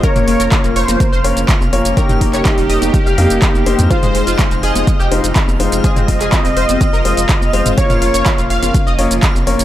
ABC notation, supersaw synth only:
X:1
M:4/4
L:1/8
Q:1/4=124
K:Ab
V:1 name="Supersaw synth"
d3 c2 z3 | G8 | c3 e2 z3 | e8 |
d3 f2 z3 |]